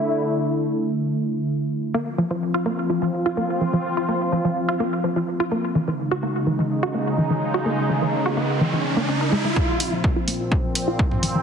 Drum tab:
HH |----------------|----------------|----------------|----------------|
T2 |----------------|----------------|----------------|----------------|
BD |----------------|----------------|----------------|----------------|

HH |----------------|--o---o---o---o-|
T2 |----------------|-------------o--|
BD |----------------|o---o---o---o---|